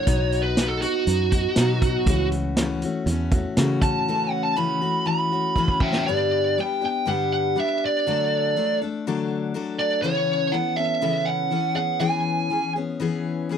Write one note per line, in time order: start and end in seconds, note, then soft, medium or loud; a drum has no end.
0.00 0.40 C#5 medium
0.07 0.84 B1 loud
0.07 0.56 B2 medium
0.07 0.57 F#3 medium
0.07 0.57 B3 medium
0.07 0.57 D#4 medium
0.07 0.58 F#4 loud
0.07 kick loud
0.07 closed hi-hat medium
0.32 closed hi-hat medium
0.43 0.68 B4 medium
0.57 0.83 B2 medium
0.57 0.83 F#3 medium
0.57 0.83 B3 medium
0.57 0.82 D#4 medium
0.57 0.81 F#4 medium
0.57 snare loud
0.57 closed hi-hat medium
0.68 0.81 A4 medium
0.82 1.07 B3 soft
0.82 1.08 D#4 medium
0.82 2.28 F#4 loud
0.82 1.07 F#4 medium
0.82 closed hi-hat medium
1.07 1.46 F#2 loud
1.07 1.32 F#3 medium
1.07 1.33 B3 medium
1.07 1.33 D#4 medium
1.07 1.32 F#4 medium
1.07 closed hi-hat medium
1.32 1.57 B3 soft
1.32 1.57 D#4 medium
1.32 1.57 F#4 medium
1.32 kick medium
1.32 closed hi-hat medium
1.56 1.96 B2 medium
1.56 2.07 B2 loud
1.56 2.08 F#3 loud
1.56 2.08 B3 loud
1.56 2.08 D#4 loud
1.56 2.08 F#4 loud
1.56 snare loud
1.56 closed hi-hat medium
1.82 kick loud
1.82 closed hi-hat medium
2.06 2.84 C#2 loud
2.06 2.56 C#3 medium
2.06 2.56 E3 medium
2.06 2.57 A3 medium
2.06 2.57 C#4 loud
2.06 2.57 F#4 loud
2.06 kick loud
2.06 closed hi-hat medium
2.32 closed hi-hat medium
2.57 2.82 C#3 medium
2.57 2.82 E3 medium
2.57 2.83 A3 medium
2.57 2.82 C#4 medium
2.57 2.83 F#4 loud
2.57 snare loud
2.57 closed hi-hat loud
2.82 3.09 A3 medium
2.82 3.08 C#4 medium
2.82 3.08 F#4 medium
2.82 closed hi-hat medium
3.06 3.45 E2 loud
3.06 3.33 E3 medium
3.06 3.33 A3 medium
3.06 closed hi-hat medium
3.11 3.34 C#4 medium
3.11 3.32 F#4 medium
3.31 3.58 F#4 medium
3.31 kick medium
3.31 closed hi-hat medium
3.35 3.57 A3 medium
3.35 3.57 C#4 soft
3.57 3.96 C#3 loud
3.57 4.07 C#3 loud
3.57 4.07 E3 medium
3.57 4.07 A3 loud
3.57 4.07 C#4 loud
3.57 4.08 F#4 loud
3.57 snare loud
3.57 closed hi-hat medium
3.82 4.30 A5 loud
3.82 kick loud
3.82 closed hi-hat medium
4.08 4.55 C#3 medium
4.08 4.56 E3 medium
4.08 4.55 A3 medium
4.08 4.57 C#4 loud
4.08 4.56 F#4 medium
4.30 4.43 F#5 loud
4.43 4.56 A5 loud
4.56 4.81 C#3 medium
4.56 4.81 E3 medium
4.56 4.81 A3 medium
4.56 4.81 C#4 loud
4.56 4.80 F#4 medium
4.56 5.05 B5 medium
4.82 5.05 A3 medium
4.82 5.06 C#4 soft
4.82 5.06 F#4 medium
5.06 5.31 E3 medium
5.06 5.31 A3 medium
5.06 5.31 C#4 medium
5.06 5.30 F#4 medium
5.06 5.79 B5 loud
5.32 5.56 A3 soft
5.32 5.57 C#4 soft
5.32 5.56 F#4 medium
5.56 6.06 C#3 medium
5.56 6.06 E3 medium
5.56 6.06 A3 medium
5.56 6.07 C#4 medium
5.56 6.07 F#4 medium
5.56 kick medium
5.68 kick medium
5.80 6.06 E5 medium
5.80 6.05 G5 loud
5.80 kick medium
5.93 snare medium
6.06 6.56 G2 medium
6.06 6.57 D3 medium
6.06 6.57 G3 medium
6.06 6.57 B3 medium
6.06 6.59 D4 medium
6.06 6.57 G4 medium
6.06 6.57 D5 loud
6.58 6.81 G3 medium
6.58 6.82 B3 medium
6.58 6.81 D4 medium
6.58 6.80 G4 medium
6.58 6.83 G5 loud
6.81 7.06 G3 soft
6.81 7.06 B3 soft
6.81 7.06 D4 medium
6.81 7.06 G4 medium
6.86 7.08 G5 loud
7.06 7.55 G2 medium
7.06 7.55 D3 medium
7.06 7.55 G3 medium
7.06 7.56 B3 medium
7.06 7.56 D4 medium
7.06 7.56 G4 medium
7.06 7.32 F#5 medium
7.33 7.57 F#5 loud
7.56 8.05 G3 medium
7.56 8.05 B3 medium
7.56 8.06 D4 medium
7.56 8.06 G4 medium
7.56 7.83 E5 medium
7.85 8.78 D5 medium
8.07 8.55 D3 medium
8.07 8.55 F#3 medium
8.07 8.56 A3 medium
8.07 8.56 D4 medium
8.07 8.58 A4 loud
8.56 8.80 F#3 medium
8.56 8.80 A3 medium
8.56 8.81 D4 medium
8.56 8.80 A4 medium
8.81 9.06 A3 medium
8.81 9.06 D4 medium
8.81 9.05 A4 medium
9.07 9.55 D3 medium
9.07 9.53 F#3 medium
9.07 9.54 A3 loud
9.07 9.55 D4 loud
9.07 9.55 A4 medium
9.54 10.03 F#3 medium
9.54 10.04 A3 medium
9.54 10.04 D4 medium
9.54 10.04 A4 loud
9.79 10.02 D5 medium
10.02 10.53 C#3 medium
10.02 10.51 E3 medium
10.02 10.53 B3 medium
10.02 10.53 C#4 loud
10.02 10.53 A4 medium
10.02 10.54 C#5 medium
10.52 10.77 E3 medium
10.52 10.78 B3 medium
10.52 10.78 C#4 medium
10.52 10.76 A4 medium
10.52 10.78 F#5 medium
10.76 11.01 B3 soft
10.76 11.01 C#4 soft
10.76 11.01 A4 medium
10.76 11.28 E5 loud
11.02 11.51 C#3 medium
11.02 11.50 E3 medium
11.02 11.51 B3 medium
11.02 11.51 C#4 medium
11.02 11.51 A4 medium
11.25 11.75 F#5 loud
11.51 11.76 E3 medium
11.51 11.77 B3 medium
11.51 11.76 C#4 medium
11.51 11.74 A4 medium
11.75 12.00 B3 soft
11.75 12.00 C#4 soft
11.75 12.00 G#4 medium
11.75 12.01 F#5 loud
12.00 12.49 E3 medium
12.00 12.51 B3 medium
12.00 12.50 C#4 medium
12.00 12.51 G#4 loud
12.00 12.72 G#5 medium
12.50 12.75 E3 medium
12.50 12.76 B3 medium
12.50 12.76 C#4 medium
12.50 12.75 G#4 medium
12.76 12.99 B3 medium
12.76 13.00 C#4 medium
12.76 13.01 G#4 medium
13.00 13.48 E3 medium
13.00 13.49 B3 loud
13.00 13.50 C#4 medium
13.00 13.51 G#4 loud
13.49 13.58 E3 medium
13.49 13.58 B3 medium
13.49 13.58 C#4 medium
13.49 13.58 G#4 medium